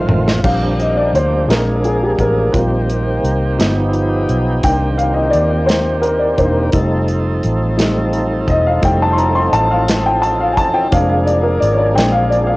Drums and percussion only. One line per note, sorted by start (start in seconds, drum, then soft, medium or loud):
0.09 floor tom loud
0.28 snare medium
0.44 kick loud
0.44 crash medium
0.80 closed hi-hat soft
1.15 closed hi-hat soft
1.50 snare loud
1.50 closed hi-hat medium
1.84 closed hi-hat soft
2.19 kick medium
2.19 closed hi-hat soft
2.54 kick loud
2.54 closed hi-hat medium
2.90 closed hi-hat soft
3.24 closed hi-hat soft
3.60 snare loud
3.60 closed hi-hat medium
3.93 closed hi-hat soft
4.29 closed hi-hat soft
4.63 kick loud
4.63 closed hi-hat medium
4.99 closed hi-hat soft
5.33 closed hi-hat soft
5.69 snare loud
5.69 closed hi-hat medium
6.03 closed hi-hat soft
6.38 kick medium
6.38 closed hi-hat soft
6.72 kick loud
6.72 closed hi-hat medium
7.08 closed hi-hat soft
7.43 closed hi-hat soft
7.79 snare loud
7.79 closed hi-hat medium
8.13 closed hi-hat soft
8.48 kick medium
8.48 closed hi-hat soft
8.83 kick loud
8.83 closed hi-hat medium
9.18 closed hi-hat soft
9.53 closed hi-hat soft
9.88 snare loud
9.88 closed hi-hat medium
10.23 closed hi-hat soft
10.57 kick medium
10.57 closed hi-hat soft
10.92 kick loud
10.92 closed hi-hat medium
11.27 closed hi-hat soft
11.62 closed hi-hat medium
11.98 snare loud
11.98 closed hi-hat medium
12.32 closed hi-hat soft